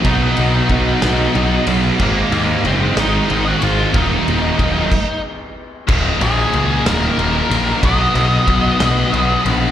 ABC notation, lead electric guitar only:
X:1
M:6/8
L:1/16
Q:3/8=62
K:Ebm
V:1 name="Lead electric guitar"
[^D^d]8- [Dd]2 z2 | [B,B]4 [=C=c]2 [Ee]3 [Gg] [Ff]2 | [Ee]8 z4 | z2 A4 B6 |
^d8- d2 z2 |]